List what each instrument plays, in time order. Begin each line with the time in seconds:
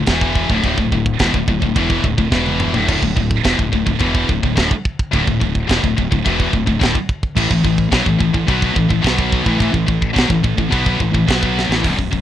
0.06 fingered electric bass E1, distorted electric guitar E2 B2, kick, snare, china
0.11 distorted electric guitar E3
0.21 kick
0.35 kick
0.49 fingered electric bass D1, distorted electric guitar D2 A2, kick
0.64 fingered electric bass D1, distorted electric guitar D2 A2, kick, china
0.78 fingered electric bass D1, distorted electric guitar D2 A2, kick
0.91 fingered electric bass D1, distorted electric guitar D2 A2, kick
1.06 kick
1.19 fingered electric bass E1, distorted electric guitar E2 B2, kick, snare, china
1.34 fingered electric bass D1, distorted electric guitar D2 A2, kick
1.47 fingered electric bass D1, distorted electric guitar D2 A2, kick
1.62 fingered electric bass D1, distorted electric guitar D2 A2, kick
1.75 fingered electric bass E1, distorted electric guitar E2 B2 E3, kick, china
1.90 kick
2.04 fingered electric bass D1, distorted electric guitar D2 A2, kick
2.18 fingered electric bass D1, distorted electric guitar D2 A2, kick
2.32 fingered electric bass E1, distorted electric guitar E2 B2 E3, kick, snare
2.46 high tom
2.60 mid tom
2.73 fingered electric bass D1, distorted electric guitar D2 A2, floor tom
2.88 fingered electric bass D1, distorted electric guitar D2 A2, kick, crash, china
3.02 fingered electric bass D1, distorted electric guitar D2 A2, kick
3.16 fingered electric bass D1, distorted electric guitar D2 A2, kick
3.31 kick
3.44 fingered electric bass E1, distorted electric guitar E2 B2, kick, snare, china
3.58 fingered electric bass D1, distorted electric guitar D2 A2, kick
3.72 fingered electric bass D1, distorted electric guitar D2 A2, kick
3.86 fingered electric bass D1, distorted electric guitar D2 A2, kick
3.99 fingered electric bass E1, distorted electric guitar E2 B2 E3, kick, china
4.15 kick
4.28 fingered electric bass D1, distorted electric guitar D2 A2, kick
4.43 fingered electric bass D1, distorted electric guitar D2 A2, kick
4.56 fingered electric bass D1, distorted electric guitar D2 A2, kick, snare, china
4.71 kick
4.85 kick
4.99 kick
5.11 fingered electric bass D1, distorted electric guitar D2 A2, kick, china
5.24 fingered electric bass D1, distorted electric guitar D2 A2, kick
5.40 fingered electric bass D1, distorted electric guitar D2 A2, kick
5.55 kick
5.67 fingered electric bass E1, distorted electric guitar E2 B2, kick, snare, china
5.83 fingered electric bass D1, distorted electric guitar D2 A2, kick
5.97 fingered electric bass D1, distorted electric guitar D2 A2, kick
6.11 fingered electric bass D1, distorted electric guitar D2 A2, kick
6.24 fingered electric bass E1, distorted electric guitar E2 B2 E3, kick, china
6.40 kick
6.52 fingered electric bass D1, distorted electric guitar D2 A2, kick
6.66 fingered electric bass D1, distorted electric guitar D2 A2, kick
6.79 fingered electric bass D1, distorted electric guitar D2 A2, kick, china
6.83 snare
6.95 kick
7.09 kick
7.23 kick
7.36 fingered electric bass A1, distorted electric guitar A2 E3, kick, crash, china
7.51 fingered electric bass A1, distorted electric guitar A2 E3, kick
7.64 fingered electric bass A1, distorted electric guitar A2 E3, kick
7.78 kick
7.92 fingered electric bass B1, distorted electric guitar B2 F#3, kick, snare, china
8.06 fingered electric bass A1, distorted electric guitar A2 E3, kick
8.19 fingered electric bass A1, distorted electric guitar A2 E3, kick
8.33 fingered electric bass A1, distorted electric guitar A2 E3, kick
8.47 fingered electric bass B1, distorted electric guitar B2 F#3 B3, kick, china
8.62 kick
8.75 fingered electric bass A1, distorted electric guitar A2 E3, kick
8.89 fingered electric bass A1, distorted electric guitar A2 E3, kick
9.02 fingered electric bass B1, distorted electric guitar B2 F#3 B3, kick
9.06 snare, china
9.19 kick
9.32 kick
9.43 fingered electric bass A1, distorted electric guitar A2 E3, kick
9.57 fingered electric bass A1, distorted electric guitar A2 E3, kick
9.61 distorted electric guitar A2 E3, china
9.71 fingered electric bass A1, distorted electric guitar A2 E3, kick
9.87 fingered electric bass A1, distorted electric guitar A2 E3, kick
10.02 kick
10.13 fingered electric bass B1, distorted electric guitar B2 F#3, kick
10.18 snare, china
10.28 fingered electric bass A1, distorted electric guitar A2 E3, kick
10.43 fingered electric bass A1, distorted electric guitar A2 E3, kick
10.58 fingered electric bass A1, distorted electric guitar A2 E3, kick
10.70 fingered electric bass B1, distorted electric guitar B2 F#3 B3, kick, china
10.86 kick
11.00 fingered electric bass A1, distorted electric guitar A2 E3, kick
11.13 fingered electric bass A1, distorted electric guitar A2 E3, kick
11.28 fingered electric bass B1, distorted electric guitar B2 F#3 B3, kick, snare, china
11.43 kick
11.59 snare
11.69 fingered electric bass A1, distorted electric guitar A2 E3, snare
11.83 fingered electric bass B0, distorted electric guitar B1 F#2, kick, open hi-hat
11.97 fingered electric bass B0, distorted electric guitar B1 F#2, kick
12.11 fingered electric bass B0, distorted electric guitar B1 F#2, kick